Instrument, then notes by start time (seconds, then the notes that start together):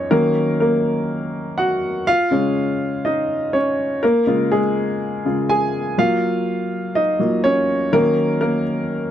grand piano
Already playing: F#2 F3 A#3 C#4 D#4 F4 C#5 D#5 F5
0.11 D#3 F#3 A#3 C#4 A#4
0.60 A#3 A#4
1.58 F#4 F#5
2.07 F4 F5
2.31 C#3 G#3 C#4
3.05 D#4 D#5
3.53 C#4 C#5
4.03 A#3 A#4
4.27 C#3 G#3 F4
4.52 G#3 G#4
5.25 C#3 G#3 F4
5.49 G#4 G#5
5.98 F#3 A#3 F4 F5
6.95 D#4 D#5
7.19 F#3 A#3 F4
7.44 C#4 C#5
7.93 D#3 F#3 A#3 C#4 A#4
8.41 A#3 A#4